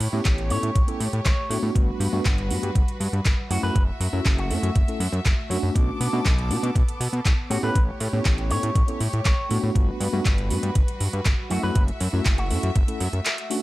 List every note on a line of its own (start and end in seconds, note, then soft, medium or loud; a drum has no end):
0.00 0.08 A2 loud
0.00 1.73 A3 medium
0.00 1.74 G4 medium
0.00 1.73 C#5 medium
0.00 open hi-hat loud
0.13 0.21 A2 loud
0.13 0.47 B3 medium
0.13 0.48 C#4 medium
0.13 0.48 E4 medium
0.13 0.48 G4 medium
0.25 0.52 A1 loud
0.25 kick loud
0.25 clap loud
0.25 closed hi-hat medium
0.38 closed hi-hat soft
0.50 0.58 A2 loud
0.50 0.69 B3 medium
0.50 0.69 C#4 medium
0.50 0.70 E4 medium
0.50 0.70 A4 medium
0.50 0.88 C#5 medium
0.50 open hi-hat loud
0.63 0.71 A2 medium
0.63 closed hi-hat medium
0.75 0.83 A1 loud
0.75 kick loud
0.75 closed hi-hat medium
0.87 0.99 B3 medium
0.87 1.00 C#4 medium
0.87 1.00 E4 medium
0.87 1.00 A4 medium
0.87 closed hi-hat medium
1.00 1.08 A2 medium
1.00 open hi-hat loud
1.13 1.21 A2 medium
1.13 closed hi-hat soft
1.25 1.33 A1 medium
1.25 1.81 C#5 medium
1.25 kick loud
1.25 clap loud
1.25 closed hi-hat medium
1.50 1.58 A2 loud
1.50 2.10 A3 medium
1.50 2.10 B3 medium
1.50 2.10 D4 medium
1.50 2.11 F#4 loud
1.50 open hi-hat loud
1.63 1.70 A2 medium
1.75 1.91 G1 loud
1.75 3.49 G3 medium
1.75 3.49 F#4 medium
1.75 3.49 B4 medium
1.75 kick loud
1.75 closed hi-hat medium
2.00 2.08 G2 loud
2.00 open hi-hat loud
2.13 2.20 G2 medium
2.13 2.25 A3 loud
2.13 2.25 B3 medium
2.13 2.25 D4 medium
2.13 2.25 F#4 loud
2.25 2.52 G1 loud
2.25 kick loud
2.25 clap loud
2.25 closed hi-hat medium
2.38 closed hi-hat soft
2.50 2.58 G2 medium
2.50 2.69 A3 medium
2.50 2.69 B3 medium
2.50 2.70 D4 medium
2.50 2.70 F#4 medium
2.50 open hi-hat loud
2.63 2.71 G2 medium
2.63 closed hi-hat medium
2.75 2.83 G1 loud
2.75 kick loud
2.75 closed hi-hat medium
2.88 closed hi-hat medium
3.00 3.08 G2 medium
3.00 open hi-hat loud
3.13 3.21 G2 medium
3.13 closed hi-hat soft
3.25 3.33 G1 medium
3.25 kick loud
3.25 clap loud
3.25 closed hi-hat medium
3.50 3.58 F#2 loud
3.50 3.61 A3 medium
3.50 5.73 A3 medium
3.50 3.61 C#4 medium
3.50 3.61 E4 medium
3.50 5.73 F#4 medium
3.50 3.61 F#4 medium
3.50 3.62 F#4 loud
3.50 5.73 E5 medium
3.50 open hi-hat loud
3.63 3.71 F#2 medium
3.63 3.75 A3 medium
3.63 3.75 C#4 medium
3.63 3.75 E4 medium
3.63 3.75 F#4 medium
3.63 3.82 B4 medium
3.75 3.91 F#1 loud
3.75 kick loud
3.75 closed hi-hat medium
4.00 4.08 F#2 loud
4.00 open hi-hat loud
4.13 4.21 F#2 medium
4.13 4.47 A3 medium
4.13 4.48 C#4 medium
4.13 4.48 E4 medium
4.13 4.48 F#4 medium
4.25 4.52 F#1 loud
4.25 kick loud
4.25 clap loud
4.25 closed hi-hat medium
4.38 4.76 F#4 medium
4.38 closed hi-hat soft
4.50 4.58 F#2 loud
4.50 4.69 A3 medium
4.50 4.70 C#4 medium
4.50 4.70 E4 medium
4.50 4.70 A4 medium
4.50 open hi-hat loud
4.63 4.71 F#2 loud
4.63 closed hi-hat soft
4.76 4.83 F#1 loud
4.76 kick loud
4.76 closed hi-hat medium
4.88 5.00 A3 medium
4.88 5.00 C#4 medium
4.88 5.00 E4 medium
4.88 5.00 A4 medium
4.88 closed hi-hat medium
5.00 5.08 F#2 medium
5.00 open hi-hat loud
5.12 5.20 F#2 medium
5.12 closed hi-hat soft
5.25 5.33 F#1 medium
5.25 kick loud
5.25 clap loud
5.25 closed hi-hat medium
5.49 5.58 F#2 loud
5.49 6.10 A3 medium
5.49 6.10 C#4 medium
5.49 6.10 D4 medium
5.49 6.11 F#4 loud
5.49 open hi-hat loud
5.63 5.71 F#2 medium
5.75 5.91 B1 medium
5.75 7.49 B3 medium
5.75 7.49 A4 medium
5.75 7.49 D6 medium
5.75 kick loud
5.75 closed hi-hat medium
6.00 6.08 B2 medium
6.00 open hi-hat loud
6.13 6.21 B2 medium
6.13 6.25 A3 loud
6.13 6.25 C#4 medium
6.13 6.25 D4 medium
6.13 6.25 F#4 loud
6.25 6.52 B1 loud
6.25 kick loud
6.25 clap loud
6.25 closed hi-hat medium
6.38 closed hi-hat soft
6.50 6.58 B2 medium
6.50 6.69 A3 medium
6.50 6.69 C#4 medium
6.50 6.70 D4 medium
6.50 6.70 F#4 medium
6.50 open hi-hat loud
6.63 6.71 B2 medium
6.63 closed hi-hat medium
6.75 6.83 B1 loud
6.75 kick loud
6.75 closed hi-hat medium
6.88 closed hi-hat soft
7.00 7.08 B2 medium
7.00 open hi-hat loud
7.13 7.20 B2 medium
7.13 closed hi-hat soft
7.25 7.33 B1 medium
7.25 kick loud
7.25 clap loud
7.25 closed hi-hat medium
7.50 7.58 A2 loud
7.50 9.73 A3 medium
7.50 7.61 B3 loud
7.50 7.61 C#4 medium
7.50 7.61 E4 medium
7.50 7.61 F#4 medium
7.50 9.73 G4 medium
7.50 7.62 G4 loud
7.50 9.73 C#5 medium
7.50 open hi-hat loud
7.62 7.71 A2 medium
7.62 7.75 B3 medium
7.62 7.75 C#4 medium
7.62 7.75 E4 medium
7.62 7.75 G4 medium
7.62 7.82 B4 medium
7.75 7.91 A1 loud
7.75 kick loud
7.75 closed hi-hat medium
8.00 8.08 A2 loud
8.00 open hi-hat loud
8.13 8.21 A2 loud
8.13 8.47 B3 medium
8.13 8.48 C#4 medium
8.13 8.48 E4 medium
8.13 8.48 G4 medium
8.25 8.52 A1 loud
8.25 kick loud
8.25 clap loud
8.25 closed hi-hat medium
8.38 closed hi-hat soft
8.50 8.58 A2 loud
8.50 8.69 B3 medium
8.50 8.70 C#4 medium
8.50 8.70 E4 medium
8.50 8.70 A4 medium
8.50 8.88 C#5 medium
8.50 open hi-hat loud
8.63 8.71 A2 loud
8.63 closed hi-hat medium
8.75 8.83 A1 loud
8.75 kick loud
8.75 closed hi-hat medium
8.88 9.00 B3 medium
8.88 9.00 C#4 medium
8.88 9.00 E4 medium
8.88 9.00 A4 medium
8.88 closed hi-hat medium
9.00 9.08 A2 loud
9.00 open hi-hat loud
9.13 9.21 A2 loud
9.13 closed hi-hat soft
9.25 9.33 A1 medium
9.25 9.81 C#5 medium
9.25 kick loud
9.25 clap loud
9.25 closed hi-hat medium
9.49 9.58 A2 loud
9.49 10.10 A3 medium
9.49 10.10 B3 medium
9.49 10.10 D4 medium
9.49 10.11 F#4 loud
9.49 open hi-hat loud
9.63 9.71 A2 medium
9.75 9.91 G1 loud
9.75 11.49 G3 medium
9.75 13.62 F#4 medium
9.75 11.49 B4 medium
9.75 kick loud
9.75 closed hi-hat medium
10.00 10.08 G2 loud
10.00 open hi-hat loud
10.12 10.21 G2 medium
10.12 10.25 A3 loud
10.12 10.25 B3 loud
10.12 10.25 D4 loud
10.12 10.25 F#4 loud
10.25 10.52 G1 loud
10.25 kick loud
10.25 clap loud
10.25 closed hi-hat medium
10.38 closed hi-hat soft
10.50 10.58 G2 medium
10.50 10.69 A3 medium
10.50 10.69 B3 medium
10.50 10.69 D4 medium
10.50 10.70 F#4 medium
10.50 open hi-hat loud
10.63 10.71 G2 loud
10.63 closed hi-hat medium
10.75 10.83 G1 loud
10.75 kick loud
10.75 closed hi-hat medium
10.88 closed hi-hat medium
11.00 11.08 G2 medium
11.00 open hi-hat loud
11.13 11.21 G2 medium
11.13 closed hi-hat soft
11.25 11.33 G1 medium
11.25 kick loud
11.25 clap loud
11.25 closed hi-hat medium
11.50 11.58 F#2 loud
11.50 11.61 A3 loud
11.50 13.62 A3 medium
11.50 11.61 C#4 medium
11.50 11.61 E4 medium
11.50 11.61 F#4 medium
11.50 11.62 F#4 loud
11.50 13.62 E5 medium
11.50 open hi-hat loud
11.62 11.71 F#2 medium
11.62 11.74 A3 medium
11.62 11.75 C#4 medium
11.62 11.75 E4 medium
11.62 11.75 F#4 medium
11.62 11.82 B4 medium
11.76 11.91 F#1 loud
11.76 kick loud
11.76 closed hi-hat medium
11.88 closed hi-hat soft
12.01 12.08 F#2 medium
12.01 open hi-hat loud
12.13 12.21 F#2 medium
12.13 12.47 A3 medium
12.13 12.47 C#4 medium
12.13 12.48 E4 medium
12.13 12.48 F#4 medium
12.25 12.52 F#1 loud
12.25 kick loud
12.25 clap loud
12.25 closed hi-hat medium
12.38 12.76 F#4 medium
12.38 closed hi-hat soft
12.50 12.58 F#2 loud
12.50 12.69 A3 medium
12.50 12.69 C#4 medium
12.50 12.70 E4 medium
12.50 12.70 A4 medium
12.50 open hi-hat loud
12.63 12.71 F#2 loud
12.63 closed hi-hat medium
12.76 12.83 F#1 loud
12.76 kick loud
12.76 closed hi-hat medium
12.88 13.00 A3 medium
12.88 13.00 C#4 medium
12.88 13.00 E4 medium
12.88 13.00 A4 medium
12.88 closed hi-hat medium
13.00 13.08 F#2 medium
13.00 open hi-hat loud
13.13 13.21 F#2 medium
13.13 closed hi-hat soft
13.25 clap loud
13.25 closed hi-hat medium
13.38 closed hi-hat soft
13.50 13.62 A3 loud
13.50 13.62 C#4 medium
13.50 13.62 D4 medium
13.50 13.62 F#4 loud
13.50 open hi-hat loud